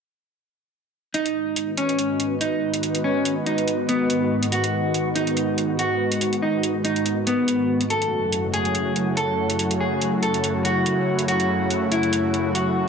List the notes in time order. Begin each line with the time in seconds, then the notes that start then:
1.14 G#2 D#3 G#3 B3 D#4 F#4, closed hi-hat
1.26 F#4, closed hi-hat
1.34 D#5
1.42 B4
1.56 closed hi-hat
1.77 C#4, closed hi-hat
1.89 closed hi-hat
1.99 closed hi-hat
2.20 closed hi-hat
2.41 D#4, closed hi-hat
2.74 closed hi-hat
2.83 closed hi-hat
2.95 closed hi-hat
3.04 C#4
3.25 closed hi-hat
3.46 D#4, closed hi-hat
3.58 closed hi-hat
3.68 closed hi-hat
3.89 B3, closed hi-hat
4.10 closed hi-hat
4.43 closed hi-hat
4.52 F#4, closed hi-hat
4.64 closed hi-hat
4.94 closed hi-hat
5.16 D#4, closed hi-hat
5.27 closed hi-hat
5.37 closed hi-hat
5.58 closed hi-hat
5.79 F#4, closed hi-hat
6.12 closed hi-hat
6.21 closed hi-hat
6.33 closed hi-hat
6.42 D#4
6.63 closed hi-hat
6.85 D#4, closed hi-hat
6.96 closed hi-hat
7.06 closed hi-hat
7.27 B3, closed hi-hat
7.48 closed hi-hat
7.81 closed hi-hat
7.90 F#2 C#3 F#3 A3 F#4 A4, closed hi-hat
8.02 E4, closed hi-hat
8.09 A3
8.32 closed hi-hat
8.42 C#5
8.54 G#4, closed hi-hat
8.65 closed hi-hat
8.75 closed hi-hat
8.96 closed hi-hat
9.17 A4, closed hi-hat
9.50 closed hi-hat
9.59 closed hi-hat
9.71 closed hi-hat
9.81 G#4
10.01 closed hi-hat
10.23 A4, closed hi-hat
10.34 closed hi-hat
10.44 closed hi-hat
10.65 F#4, closed hi-hat
10.86 closed hi-hat
11.19 closed hi-hat
11.28 F#4, closed hi-hat
11.40 closed hi-hat
11.70 closed hi-hat
11.92 E4, closed hi-hat
12.03 closed hi-hat
12.13 closed hi-hat
12.34 closed hi-hat
12.55 F#4, closed hi-hat